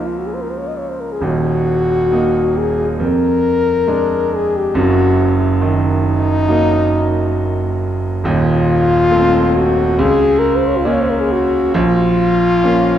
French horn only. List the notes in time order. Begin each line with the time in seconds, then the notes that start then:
0.06 F4
0.18 F#4
0.26 G#4
0.34 C5
0.42 A#4
0.50 C5
0.57 C#5
0.67 D#5
0.78 C#5
0.89 C5
1.00 A#4
1.12 G#4
1.23 F#4
2.57 G#4
3.01 A#4
4.35 G#4
4.56 G4
4.78 F#4
5.65 D#4
8.25 F4
9.57 F#4
10.00 G#4
10.39 A#4
10.56 C5
10.68 C#5
10.78 F4
10.86 D#5
10.94 C#5
11.01 C5
11.10 A#4
11.21 G#4
11.32 F#4
11.76 F4